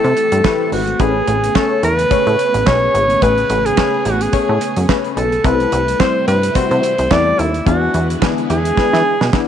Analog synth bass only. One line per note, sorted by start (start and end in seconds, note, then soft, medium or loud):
0.04 0.14 C3 loud
0.32 0.42 G2 medium
0.72 0.95 G#1 medium
1.00 1.22 A1 loud
1.28 1.50 A1 loud
1.83 2.06 E2 medium
2.11 2.17 A2 medium
2.27 2.36 A2 medium
2.54 2.64 A1 medium
2.67 2.89 B1 loud
2.94 3.17 G#1 loud
3.22 3.45 A1 loud
3.50 3.72 A1 loud
4.06 4.28 A1 medium
4.33 4.39 A2 soft
4.49 4.59 A2 loud
4.77 4.87 F#2 medium
5.17 5.39 B1 loud
5.45 5.67 C2 loud
5.73 5.95 C2 loud
6.28 6.50 G2 medium
6.55 6.62 C3 medium
6.71 6.81 C3 medium
6.99 7.09 C2 medium
7.11 7.33 E2 medium
7.39 7.61 D#2 medium
7.66 7.89 E2 loud
7.94 8.17 E2 loud
8.50 8.72 E2 loud
8.77 8.84 E3 soft
8.93 9.03 E3 loud
9.21 9.31 B2 medium